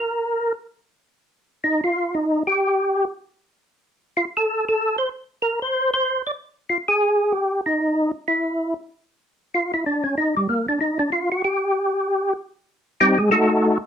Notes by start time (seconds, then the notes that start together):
Already playing: A#4
1.64 D#4
1.84 F4
2.15 D#4
2.47 G4
4.17 F4
4.37 A4
4.69 A4
4.98 C5
5.42 A#4
5.62 C5
5.94 C5
6.27 D5
6.70 F4
6.88 G#4
7.32 G4
7.66 D#4
8.28 E4
9.54 F4
9.74 E4
9.86 D4
10.04 C#4
10.18 D#4
10.37 G3
10.49 A#3
10.69 D4
10.81 D#4
10.99 D4
11.12 F4
11.32 F#4
11.44 G4
13.00 G3 C4 D#4 G4
13.18 G#3 G#4
13.31 A3 D#4 F#4 A4